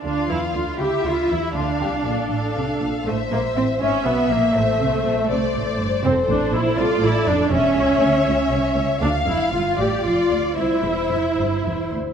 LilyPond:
<<
  \new Staff \with { instrumentName = "Violin section" } { \time 6/8 \key d \minor \tempo 4. = 80 f''4. e''4. | f''4. f''4. | e''4. e''4. | c''4. c''4. |
\key f \major a'4. a'4. | des''2. | f''4. d''4. | c''2~ c''8 r8 | }
  \new Staff \with { instrumentName = "Violin section" } { \time 6/8 \key d \minor f'4. e'4. | f'8 g'8 a'2 | c''4. e''4.~ | e''4. d''4. |
\key f \major c''4. d''4. | fes''2. | f''4. d''4. | e''2~ e''16 r8. | }
  \new Staff \with { instrumentName = "Viola section" } { \time 6/8 \key d \minor d'8 e'8 f'8 g'8 f'8 e'8 | d'2~ d'8 r8 | a8 bes8 c'8 cis'8 b8 bes8 | a2~ a8 r8 |
\key f \major c'8 d'8 e'8 f'8 e'8 d'8 | des'2~ des'8 r8 | d'8 e'8 f'8 g'8 f'4 | e'2~ e'8 r8 | }
  \new Staff \with { instrumentName = "Cello section" } { \clef bass \time 6/8 \key d \minor d8 e8 d8 cis8 d8 e8 | d8 c8 bes,8 a,8 c8 bes,8 | a,8 bes,8 a,8 gis,8 b,8 bes,8 | a,8 c8 bes,8 c8 a,8 g,8 |
\key f \major f,8 a,8 bes,8 c8 a,8 f,8 | fes,8 des,8 d,8 des,8 c,8 des,8 | d,8 f,8 g,8 a,8 f,8 d,8 | c,8 e,8 f,8 g,8 e,8 d,8 | }
  \new Staff \with { instrumentName = "Double bass section" } { \clef bass \time 6/8 \key d \minor d,8 e,8 d,8 cis,8 d,8 e,8 | d,8 c,8 bes,,8 a,,8 c,8 bes,,8 | a,,8 bes,,8 a,,8 gis,,8 b,,8 bes,,8 | a,,8 c,8 bes,,8 c,8 a,,8 g,,8 |
\key f \major f,,8 a,,8 bes,,8 c,8 a,,8 f,,8 | fes,,8 des,8 d,8 des,8 c,8 des,8 | d,8 f,,8 g,,8 a,,8 f,,8 d,8 | c,8 e,,8 f,,8 g,,8 e,,8 d,8 | }
>>